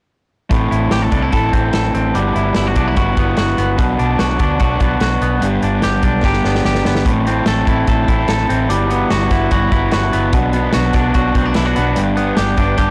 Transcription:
0.50 A1 A2 A3 C4 E4 A4, kick, closed hi-hat
0.71 A1 E4, closed hi-hat
0.91 A1 G4, snare, closed hi-hat
1.02 A4
1.11 C2 C4 D4 E4 A4, kick, closed hi-hat
1.22 E4
1.31 A1 A3 C4 E4, kick, closed hi-hat
1.35 A4
1.53 A1 C4, kick, closed hi-hat
1.73 A1 A4, snare, closed hi-hat
1.94 A1 C4, closed hi-hat
2.14 G1 G3 B3 E4 F#4, closed hi-hat
2.35 G1 E4, closed hi-hat
2.55 G1 E4, snare, closed hi-hat
2.67 F#4
2.75 B1 B3 D4 E4 F#4, kick, closed hi-hat
2.88 E4
2.95 G1 G3 B3 E4 F#4, kick, closed hi-hat
3.16 G1 B3 E4 F#4, kick, closed hi-hat
3.37 G1 F#4, snare, closed hi-hat
3.58 G1 B3, closed hi-hat
3.77 B1 B2 F#3 B3 D4 F#4, kick, closed hi-hat
3.99 B1 D4, closed hi-hat
4.19 B1 F#4, snare, closed hi-hat
4.39 D2 B3 D4 F#4, kick, closed hi-hat
4.58 B1 B2 F#3 B3 D4 F#4, kick, closed hi-hat
4.79 B1 B3 D4 F#4, kick, closed hi-hat
5.00 B1 F#4, snare, closed hi-hat
5.21 B1 B3, closed hi-hat
5.40 G1 G2 G3 B3 D4, closed hi-hat
5.45 G4
5.62 G1 D4, closed hi-hat
5.82 G1 G4, snare, closed hi-hat
6.03 B1 D4, kick, closed hi-hat
6.23 G1 G3 B3 D4 G4, kick, snare
6.33 snare
6.44 G1 B3 D4 G4, snare
6.55 snare
6.65 G1 G4, snare
6.75 snare
6.85 G1 B3, snare
6.95 snare
7.05 A1 A2 A3 C4 E4 A4, kick, closed hi-hat
7.25 C4 E4 A4, closed hi-hat
7.46 A1 A3 C4 E4 A4, snare, closed hi-hat
7.67 A1 C4 E4 A4, kick, closed hi-hat
7.87 A1 A3 C4 E4 A4, kick, closed hi-hat
8.08 A1 C4 E4 A4, kick, closed hi-hat
8.28 A1 A3 C4 E4 A4, snare, closed hi-hat
8.49 A1 C4 E4 A4, closed hi-hat
8.69 G1 G3 B3 E4 F#4, closed hi-hat
8.89 B3 E4 F#4, closed hi-hat
9.09 G1 G3 B3 E4 F#4, snare, closed hi-hat
9.31 G1 B3 E4 F#4, kick, snare, closed hi-hat
9.51 G1 G3 B3 E4 F#4, kick, closed hi-hat
9.71 G1 B3 E4 F#4, kick, closed hi-hat
9.91 G1 G3 B3 E4 F#4, snare, closed hi-hat
10.12 G1 B3 E4 F#4, closed hi-hat
10.33 B1 B2 F#3 B3 D4 F#4, kick, closed hi-hat
10.53 D4 F#4, closed hi-hat
10.57 B3
10.73 B1 F#3 B3 D4, snare, closed hi-hat
10.77 F#4
10.93 B1 D4 F#4, kick, snare, closed hi-hat
10.97 B3
11.14 B1 B2 F#3 B3 D4 F#4, kick, closed hi-hat
11.35 B1 B3 C4 D4 F#4, kick, closed hi-hat
11.45 D4
11.54 B1 F#3 B3 D4 E4, snare, closed hi-hat
11.59 F#4
11.66 F#4
11.76 B1 B3 D4 F#4, closed hi-hat
11.96 G1 G2 G3 B3 D4 G4, closed hi-hat
12.16 B3 D4 G4, closed hi-hat
12.37 G1 G3 B3 D4 G4, snare, closed hi-hat
12.57 G1 B3 D4 G4, kick, closed hi-hat
12.77 G1 G3 B3 D4 G4, kick, closed hi-hat

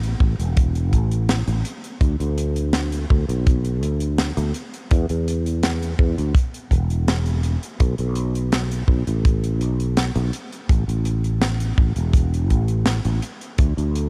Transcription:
Already playing: A1
0.03 closed hi-hat
0.20 A1, kick
0.39 E1, closed hi-hat
0.57 kick, closed hi-hat
0.75 closed hi-hat
0.93 A1, kick, closed hi-hat
1.12 closed hi-hat
1.29 snare, closed hi-hat
1.48 A1, closed hi-hat
1.65 closed hi-hat
1.84 closed hi-hat
2.01 D2, kick, closed hi-hat
2.20 D2, closed hi-hat
2.38 closed hi-hat
2.56 closed hi-hat
2.73 snare, closed hi-hat
2.92 closed hi-hat
3.10 D2, kick
3.29 B1, closed hi-hat
3.47 kick, closed hi-hat
3.65 closed hi-hat
3.82 D2, closed hi-hat
4.00 closed hi-hat
4.18 snare, closed hi-hat
4.37 D2, closed hi-hat
4.54 closed hi-hat
4.74 closed hi-hat
4.91 E2, kick, closed hi-hat
5.09 E2, closed hi-hat
5.28 closed hi-hat
5.46 closed hi-hat
5.63 snare, closed hi-hat
5.82 closed hi-hat
5.99 E2, kick
6.18 D2, closed hi-hat
6.35 kick, closed hi-hat
6.54 closed hi-hat
6.71 E1, kick, closed hi-hat
6.90 closed hi-hat
7.08 snare, closed hi-hat
7.26 closed hi-hat
7.43 closed hi-hat
7.63 closed hi-hat
7.80 B1, kick, closed hi-hat
7.98 B1, closed hi-hat
8.15 closed hi-hat
8.35 closed hi-hat
8.52 snare, closed hi-hat
8.72 closed hi-hat
8.88 B1, kick
9.07 A1, closed hi-hat
9.25 kick, closed hi-hat
9.44 closed hi-hat
9.61 B1, closed hi-hat
9.80 closed hi-hat
9.97 snare, closed hi-hat
10.16 B1, closed hi-hat
10.33 closed hi-hat
10.52 closed hi-hat
10.69 A1, kick, closed hi-hat
10.88 A1, closed hi-hat
11.05 closed hi-hat
11.24 closed hi-hat
11.42 snare, closed hi-hat
11.60 closed hi-hat
11.78 A1, kick
11.96 E1, closed hi-hat
12.13 kick, closed hi-hat
12.34 closed hi-hat
12.50 A1, kick, closed hi-hat
12.68 closed hi-hat
12.86 snare, closed hi-hat
13.05 A1, closed hi-hat
13.22 closed hi-hat
13.41 closed hi-hat
13.58 D2, kick, closed hi-hat
13.77 D2, closed hi-hat
13.96 closed hi-hat

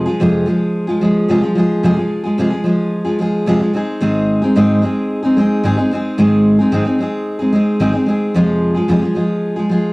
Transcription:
0.06 F3 G#3 F4 G#4
0.20 F2 C3 F3 G#3 F4 G#4
0.46 F3 G#3 F4 G#4
0.87 F3 G#3 F4 G#4
1.01 F3 G#3 F4 G#4
1.28 F2 C3 F3 G#3 F4 G#4
1.42 F3 G#3 F4 G#4
1.55 F3 G#3 F4 G#4
1.83 F2 C3 F3 G#3 F4 G#4
1.97 F3 G#3 F4 G#4
2.24 F3 G#3 F4 G#4
2.38 F2 C3 F3 G#3 F4 G#4
2.50 F3 G#3 F4 G#4
2.64 F3 G#3 F4 G#4
3.05 F3 G#3 F4 G#4
3.19 F3 G#3 F4 G#4
3.46 F2 C3 F3 G#3 F4 G#4
3.60 F3 G#3 F4 G#4
3.73 G#3 C4 D#4 G#4
4.01 G#2 D#3 G#3 C4 D#4 G#4
4.42 G#3 C4 D#4 G#4
4.56 G#2 D#3 G#3 C4 D#4 G#4
4.82 G#3 C4 D#4 G#4
5.23 G#3 C4 D#4 G#4
5.37 G#3 C4 D#4 G#4
5.64 G#2 D#3 G#3 C4 D#4 G#4
5.77 G#3 C4 D#4 G#4
5.91 G#3 C4 D#4 G#4
6.18 G#2 D#3 G#3 C4 D#4 G#4
6.59 G#3 C4 D#4 G#4
6.72 G#2 D#3 G#3 C4 D#4 G#4
6.85 G#3 C4 D#4 G#4
6.99 G#3 C4 D#4 G#4
7.39 G#3 C4 D#4 G#4
7.53 G#3 C4 D#4 G#4
7.80 G#2 D#3 G#3 C4 D#4 G#4
7.92 G#3 C4 D#4 G#4
8.06 G#3 C4 D#4 G#4
8.34 F2 C3 F3 G#3 F4 G#4
8.74 F3 G#3 F4 G#4
8.88 F2 C3 F3 G#3 F4 G#4
9.01 F3 G#3 F4 G#4
9.15 F3 G#3 F4 G#4
9.56 F3 G#3 F4 G#4
9.69 F3 G#3 F4 G#4

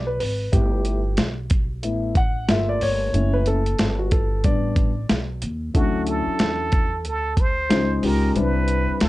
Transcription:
Already playing: B1
0.07 B4
0.20 G#1 B4, open hi-hat
0.52 G1 A3 B3 E4 G4, kick, closed hi-hat
0.85 closed hi-hat
1.17 B1, snare, closed hi-hat
1.50 kick, closed hi-hat
1.83 A1 A3 B3 E4, closed hi-hat
2.15 F#5, kick, closed hi-hat
2.48 G1 A3 A#3 F4 E5, snare, closed hi-hat
2.69 D5
2.81 G1 C#5, open hi-hat
3.13 F#1 A3 C#4 E4, closed hi-hat
3.33 B4
3.46 A4, closed hi-hat
3.66 closed hi-hat
3.79 G1, snare, closed hi-hat
3.99 F#4
4.11 A4, kick, closed hi-hat
4.44 A1 G3 B3 D4 D5, kick, closed hi-hat
4.76 kick, closed hi-hat
5.09 B1, snare, closed hi-hat
5.42 D#2, closed hi-hat
5.74 D2 E3 C#4 D4 E4 F#4 A4, kick, closed hi-hat
5.80 F#3
6.07 A4, closed hi-hat
6.27 muted upright bass stroke
6.39 E2, snare, closed hi-hat
6.72 kick, closed hi-hat
7.05 D2 A4, closed hi-hat
7.37 C5, kick, closed hi-hat
7.69 C#2 G#3 C#4 D#4 F4 C5, snare, closed hi-hat
8.02 C#2 G#3 C#4 D#4 F4 G4 A#4, open hi-hat
8.35 C2 G3 C4 D4 E4 B4, closed hi-hat
8.68 closed hi-hat
8.88 muted upright bass stroke
9.00 D2 A4, snare, closed hi-hat

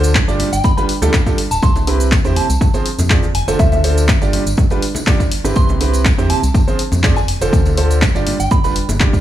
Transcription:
Already playing: D2 D3 D4 F4 A4 C5
0.04 tambourine, shaker
0.15 kick, clap, shaker
0.28 G1 G3 D4 F4 G4 D5, tambourine, shaker
0.39 open hi-hat, high conga
0.53 G1 G5, tambourine, shaker
0.64 B5, kick, tambourine, shaker
0.77 G3 D4 F4 G4 B4 B5, tambourine, shaker
0.89 open hi-hat
1.02 D2 G3 D4 F4 G4 A4, tambourine, high conga, shaker
1.13 kick, clap, tambourine, shaker
1.26 G3 D4 F4 G4 A4, kick, tambourine, shaker
1.38 open hi-hat
1.51 D1 A5, tambourine, shaker
1.62 C2 C6, kick, tambourine, shaker
1.75 tambourine, high conga, shaker
1.87 C3 C4 E4 G4 B4, open hi-hat
2.00 tambourine, shaker
2.12 kick, clap, tambourine, shaker
2.25 E2 C3 C4 E4 G4 C5, tambourine, shaker
2.36 A5, open hi-hat, high conga
2.49 C2, tambourine, shaker
2.61 kick, tambourine, shaker
2.74 F3 C4 F4 G#4 C5, tambourine, shaker
2.86 open hi-hat
2.99 F2, tambourine, high conga, shaker
3.10 F3 C4 F4 G#4 D5, kick, clap, tambourine, shaker
3.23 F2, tambourine, shaker
3.35 F1 G#5, open hi-hat
3.48 F1 D3 D4 F4 A4 C5, tambourine, shaker
3.59 D2 E5, kick, tambourine, shaker
3.72 E5, tambourine, high conga, shaker
3.84 D3 D4 F4 A4 C5, open hi-hat
3.98 tambourine, shaker
4.08 kick, clap, tambourine, shaker
4.21 G1 G3 D4 F4 G4 D5, tambourine, shaker
4.33 open hi-hat, high conga
4.46 G1, tambourine, shaker
4.57 kick, tambourine, shaker
4.70 G3 D4 F4 G4 B4, tambourine, shaker
4.82 open hi-hat
4.95 tambourine, high conga, shaker
5.07 G3 D4 F4 G4 D5, kick, clap, tambourine, shaker
5.20 kick, tambourine, shaker
5.32 open hi-hat
5.44 G1 C3 C4 E4 G4 B4, tambourine, shaker
5.55 C2 C6, kick, tambourine, shaker
5.69 tambourine, high conga, shaker
5.81 C3 C4 E4 G4 B4, open hi-hat
5.93 tambourine, shaker
6.05 kick, clap, tambourine, shaker
6.18 E2 C3 C4 E4 G4 C5, tambourine, shaker
6.30 A5, open hi-hat, high conga
6.43 C2, tambourine, shaker
6.54 kick, tambourine, shaker
6.67 F3 C4 F4 G#4 C5, tambourine, shaker
6.79 open hi-hat
6.92 F2, tambourine, high conga, shaker
7.03 F3 C4 F4 G#4 D5, kick, clap, tambourine, shaker
7.16 F2 G#5, tambourine, shaker
7.28 F1, open hi-hat
7.41 F1 D3 D4 F4 A4 C5, tambourine, shaker
7.53 D2, kick, tambourine, shaker
7.66 tambourine, high conga, shaker
7.77 D3 D4 F4 A4 C5, open hi-hat
7.91 tambourine, shaker
8.02 kick, clap, tambourine, shaker
8.15 G1 G3 D4 F4 G4 D5, tambourine, shaker
8.27 open hi-hat, high conga
8.39 G1 G5, tambourine, shaker
8.51 B5, kick, tambourine, shaker
8.64 F1 G3 D4 F4 G4 B4 B5, tambourine, shaker
8.76 open hi-hat
8.89 G1, tambourine, high conga, shaker
9.00 G3 D4 F4 G4 D5, kick, clap, tambourine, shaker
9.13 kick, tambourine, shaker

